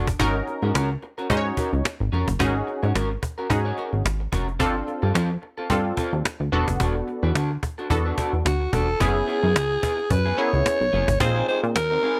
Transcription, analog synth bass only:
0.00 0.15 F#1 medium
0.20 0.42 G#1 medium
0.62 0.72 G#2 medium
0.74 0.97 C#2 loud
1.30 1.52 G#2 loud
1.73 1.83 C#2 medium
2.00 2.10 G#1 medium
2.13 2.25 F1 medium
2.28 2.38 F#1 medium
2.40 2.62 G#1 loud
2.83 2.93 G#2 loud
2.95 3.17 G#1 medium
3.50 3.73 G#2 loud
3.93 4.03 G#1 medium
4.05 4.27 G#1 medium
4.32 4.61 F1 medium
4.60 4.82 G1 medium
5.03 5.13 G2 loud
5.15 5.37 F2 loud
5.70 5.92 G2 medium
6.13 6.23 D#2 medium
6.40 6.50 D2 medium
6.52 6.65 E1 medium
6.68 6.78 F#1 medium
6.80 7.02 E1 loud
7.23 7.33 E2 loud
7.35 7.58 D2 loud
7.90 8.13 E2 loud
8.33 8.43 E2 medium
8.45 8.68 D2 medium
8.73 8.95 E1 medium
9.00 9.23 F#1 loud
9.43 9.57 F#2 loud
9.55 9.78 C#2 loud
10.10 10.33 F#2 loud
10.53 10.63 C#2 medium
10.81 10.91 B1 medium
10.93 11.05 F#1 medium
11.08 11.18 G#1 medium
11.20 11.43 A#1 loud
11.63 11.77 A#2 loud
11.75 11.98 D#2 medium

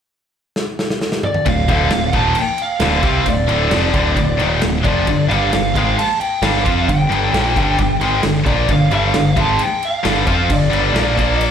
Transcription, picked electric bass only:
1.46 1.67 D1 medium
1.68 1.89 D1 medium
1.92 2.12 D1 medium
2.13 2.34 D#1 medium
2.80 3.02 D1 medium
3.03 3.24 C2 medium
3.27 3.47 D1 medium
3.49 3.70 D1 loud
3.71 3.92 F1 medium
3.94 4.15 D1 loud
4.16 4.37 D1 medium
4.40 4.61 D#1 loud
4.63 4.83 D1 medium
4.85 5.06 F1 loud
5.07 5.28 G1 medium
5.31 5.51 G1 loud
5.53 5.74 G1 medium
5.76 5.96 G#1 loud
6.42 6.63 G1 loud
6.66 6.87 F2 medium
6.88 7.09 G1 medium
7.09 7.31 G1 loud
7.33 7.54 A#1 loud
7.57 7.77 G1 loud
7.79 7.99 G1 medium
8.00 8.21 G#1 medium
8.24 8.44 G1 medium
8.46 8.67 A#1 loud
8.68 8.89 G1 medium
8.92 9.12 G1 loud
9.16 9.36 G1 medium
9.37 9.58 G#1 loud
10.05 10.26 G1 medium
10.27 10.48 F2 loud
10.50 10.71 G1 medium
10.73 10.93 G1 medium
10.94 11.15 A#1 medium
11.18 11.51 A#1 loud

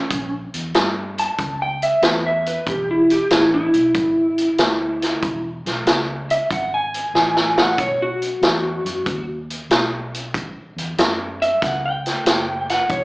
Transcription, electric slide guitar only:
0.00 0.31 C#4 medium
1.19 1.60 A5 medium
1.62 1.82 G5 medium
1.83 2.03 E5 loud
2.04 2.24 B4 medium
2.26 2.46 E5 medium
2.47 2.67 B4 medium
2.69 2.89 G4 loud
2.91 3.10 E4 loud
3.12 3.31 G4 loud
3.33 3.52 E4 medium
3.54 5.41 E4 loud
6.31 6.51 E5 medium
6.52 6.72 F#5 medium
6.74 7.56 G#5 loud
7.59 7.79 F#5 medium
7.80 8.00 C#5 loud
8.02 9.25 F#4 loud
11.42 11.62 E5 medium
11.64 11.83 F#5 medium
11.86 12.67 G5 loud
12.70 12.90 F#5 loud
12.91 13.04 C#5 medium

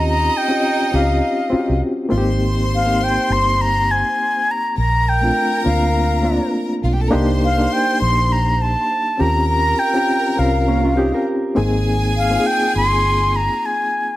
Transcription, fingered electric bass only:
0.00 0.28 D#2 loud
0.94 1.20 C#2 medium
1.53 muted fingered electric bass stroke soft
1.69 1.80 C2 medium
2.12 3.17 G#1 loud
3.30 4.02 G1 medium
4.78 5.30 A#1 medium
5.66 6.38 D2 medium
6.84 7.10 B1 loud
7.13 7.66 C2 medium
8.02 8.74 A#1 loud
9.20 9.73 D#2 loud
10.39 11.11 C2 medium
11.57 12.36 G#1 loud
12.76 13.48 G1 medium

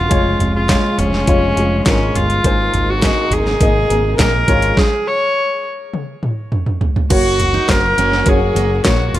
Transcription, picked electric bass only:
0.11 0.35 F1 medium
0.40 0.76 F1 medium
0.99 1.23 F1 medium
1.28 1.52 F1 medium
1.56 1.80 F1 medium
1.86 2.10 G#1 medium
2.14 2.38 G1 medium
2.45 2.68 G#1 loud
2.74 3.09 G#1 medium
3.31 3.55 G#1 medium
3.61 3.85 G#1 medium
3.90 4.14 G#1 medium
4.19 4.43 A#1 medium
4.48 4.72 G#1 medium
7.10 7.58 F#1 loud
7.69 7.92 F#1 loud
7.97 8.21 F#1 medium
8.26 8.50 F#1 medium
8.55 8.79 F#1 medium
8.85 9.09 A#1 medium
9.13 9.19 E1 medium

